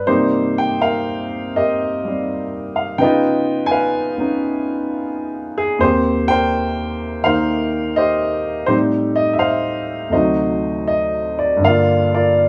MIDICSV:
0, 0, Header, 1, 2, 480
1, 0, Start_track
1, 0, Key_signature, -3, "major"
1, 0, Tempo, 737101
1, 49, Time_signature, 4, 2, 24, 8
1, 1969, Tempo, 700935
1, 3889, Tempo, 712589
1, 6289, Tempo, 747198
1, 8278, End_track
2, 0, Start_track
2, 0, Title_t, "Grand piano"
2, 0, Program_c, 0, 0
2, 0, Control_c, 0, 64, 127
2, 45, Note_on_c, 0, 48, 51
2, 45, Note_on_c, 0, 72, 74
2, 49, Note_on_c, 0, 55, 45
2, 49, Note_on_c, 0, 58, 46
2, 49, Note_on_c, 0, 63, 55
2, 49, Note_on_c, 0, 67, 56
2, 58, Control_c, 0, 64, 0
2, 164, Control_c, 0, 64, 127
2, 380, Note_on_c, 0, 79, 85
2, 383, Note_off_c, 0, 72, 0
2, 531, Note_on_c, 0, 70, 57
2, 531, Note_on_c, 0, 77, 78
2, 541, Note_off_c, 0, 79, 0
2, 991, Note_off_c, 0, 63, 0
2, 991, Note_off_c, 0, 67, 0
2, 1007, Note_off_c, 0, 70, 0
2, 1017, Note_on_c, 0, 70, 46
2, 1017, Note_on_c, 0, 75, 67
2, 1018, Note_on_c, 0, 67, 45
2, 1030, Note_off_c, 0, 77, 0
2, 1319, Note_off_c, 0, 55, 0
2, 1329, Note_on_c, 0, 55, 38
2, 1352, Note_on_c, 0, 60, 41
2, 1471, Note_off_c, 0, 75, 0
2, 1796, Note_on_c, 0, 77, 67
2, 1942, Note_off_c, 0, 70, 0
2, 1943, Note_off_c, 0, 67, 0
2, 1943, Note_on_c, 0, 49, 53
2, 1943, Note_on_c, 0, 79, 82
2, 1948, Note_off_c, 0, 77, 0
2, 1955, Note_on_c, 0, 59, 47
2, 1962, Note_on_c, 0, 75, 59
2, 1963, Note_off_c, 0, 55, 0
2, 1963, Note_on_c, 0, 71, 59
2, 1965, Note_on_c, 0, 63, 51
2, 1967, Note_off_c, 0, 48, 0
2, 1969, Note_off_c, 0, 58, 0
2, 1975, Note_off_c, 0, 60, 0
2, 1975, Note_on_c, 0, 65, 63
2, 1978, Control_c, 0, 64, 0
2, 2087, Control_c, 0, 64, 127
2, 2407, Note_on_c, 0, 80, 83
2, 2409, Note_off_c, 0, 79, 0
2, 2430, Note_off_c, 0, 71, 0
2, 2440, Note_on_c, 0, 71, 60
2, 2441, Note_on_c, 0, 77, 59
2, 2745, Note_off_c, 0, 59, 0
2, 2756, Note_on_c, 0, 59, 40
2, 2766, Note_off_c, 0, 63, 0
2, 2766, Note_on_c, 0, 61, 39
2, 2776, Note_on_c, 0, 63, 46
2, 2894, Note_off_c, 0, 75, 0
2, 3357, Note_off_c, 0, 80, 0
2, 3373, Note_off_c, 0, 71, 0
2, 3374, Note_off_c, 0, 77, 0
2, 3717, Note_on_c, 0, 68, 80
2, 3863, Note_on_c, 0, 39, 47
2, 3870, Note_off_c, 0, 68, 0
2, 3874, Note_on_c, 0, 72, 86
2, 3875, Note_off_c, 0, 49, 0
2, 3877, Note_on_c, 0, 51, 40
2, 3883, Note_off_c, 0, 59, 0
2, 3888, Note_off_c, 0, 61, 0
2, 3889, Note_on_c, 0, 60, 42
2, 3891, Note_off_c, 0, 65, 0
2, 3891, Note_on_c, 0, 67, 65
2, 3893, Note_off_c, 0, 63, 0
2, 3898, Control_c, 0, 64, 0
2, 4002, Control_c, 0, 64, 127
2, 4194, Note_on_c, 0, 79, 96
2, 4199, Note_off_c, 0, 72, 0
2, 4209, Note_on_c, 0, 72, 65
2, 4211, Note_on_c, 0, 70, 64
2, 4820, Note_off_c, 0, 67, 0
2, 4824, Note_off_c, 0, 51, 0
2, 4834, Note_on_c, 0, 51, 38
2, 4839, Note_on_c, 0, 77, 84
2, 4840, Note_off_c, 0, 72, 0
2, 4841, Note_off_c, 0, 70, 0
2, 4844, Note_on_c, 0, 58, 38
2, 4850, Note_on_c, 0, 72, 59
2, 4851, Note_on_c, 0, 70, 63
2, 4855, Note_on_c, 0, 63, 43
2, 4857, Note_off_c, 0, 79, 0
2, 5327, Note_on_c, 0, 75, 78
2, 5328, Note_off_c, 0, 72, 0
2, 5336, Note_off_c, 0, 77, 0
2, 5338, Note_on_c, 0, 72, 55
2, 5340, Note_on_c, 0, 67, 54
2, 5785, Note_off_c, 0, 70, 0
2, 5789, Note_off_c, 0, 72, 0
2, 5790, Note_off_c, 0, 67, 0
2, 5797, Note_off_c, 0, 39, 0
2, 5800, Note_on_c, 0, 72, 76
2, 5802, Note_off_c, 0, 63, 0
2, 5803, Note_off_c, 0, 51, 0
2, 5806, Note_off_c, 0, 60, 0
2, 5808, Note_off_c, 0, 58, 0
2, 5810, Note_on_c, 0, 45, 43
2, 5811, Note_on_c, 0, 67, 58
2, 5812, Note_on_c, 0, 63, 54
2, 5813, Note_on_c, 0, 55, 38
2, 5816, Note_on_c, 0, 60, 40
2, 5817, Control_c, 0, 64, 0
2, 5825, Note_off_c, 0, 75, 0
2, 5874, Note_off_c, 0, 72, 0
2, 5951, Control_c, 0, 64, 127
2, 6131, Note_on_c, 0, 75, 74
2, 6251, Note_on_c, 0, 76, 59
2, 6263, Note_off_c, 0, 75, 0
2, 6285, Note_off_c, 0, 76, 0
2, 6289, Note_on_c, 0, 77, 78
2, 6291, Note_on_c, 0, 72, 56
2, 6733, Note_off_c, 0, 67, 0
2, 6733, Note_off_c, 0, 72, 0
2, 6734, Note_off_c, 0, 63, 0
2, 6743, Note_on_c, 0, 38, 46
2, 6752, Note_on_c, 0, 48, 42
2, 6759, Note_off_c, 0, 45, 0
2, 6760, Note_off_c, 0, 55, 0
2, 6760, Note_on_c, 0, 75, 66
2, 6762, Note_off_c, 0, 60, 0
2, 6764, Note_on_c, 0, 72, 45
2, 6766, Note_on_c, 0, 54, 40
2, 6767, Control_c, 0, 64, 0
2, 6767, Note_on_c, 0, 66, 47
2, 6772, Note_off_c, 0, 77, 0
2, 6774, Note_on_c, 0, 63, 49
2, 6881, Control_c, 0, 64, 127
2, 7233, Note_off_c, 0, 75, 0
2, 7243, Note_on_c, 0, 75, 65
2, 7548, Note_off_c, 0, 75, 0
2, 7572, Note_on_c, 0, 74, 60
2, 7689, Note_on_c, 0, 43, 52
2, 7705, Note_off_c, 0, 72, 0
2, 7706, Note_off_c, 0, 66, 0
2, 7716, Note_on_c, 0, 50, 49
2, 7720, Note_off_c, 0, 38, 0
2, 7725, Note_off_c, 0, 48, 0
2, 7731, Note_off_c, 0, 54, 0
2, 7731, Note_off_c, 0, 74, 0
2, 7735, Control_c, 0, 64, 0
2, 7736, Note_off_c, 0, 63, 0
2, 7736, Note_on_c, 0, 70, 52
2, 7737, Note_on_c, 0, 58, 46
2, 7737, Note_on_c, 0, 77, 77
2, 7741, Note_on_c, 0, 74, 54
2, 7762, Note_on_c, 0, 65, 61
2, 7835, Control_c, 0, 64, 127
2, 8049, Note_off_c, 0, 74, 0
2, 8053, Note_off_c, 0, 65, 0
2, 8053, Note_off_c, 0, 70, 0
2, 8058, Note_on_c, 0, 74, 70
2, 8062, Note_on_c, 0, 65, 52
2, 8063, Note_off_c, 0, 77, 0
2, 8063, Note_on_c, 0, 70, 53
2, 8278, Note_off_c, 0, 43, 0
2, 8278, Note_off_c, 0, 50, 0
2, 8278, Note_off_c, 0, 58, 0
2, 8278, Note_off_c, 0, 65, 0
2, 8278, Note_off_c, 0, 70, 0
2, 8278, Note_off_c, 0, 74, 0
2, 8278, End_track
0, 0, End_of_file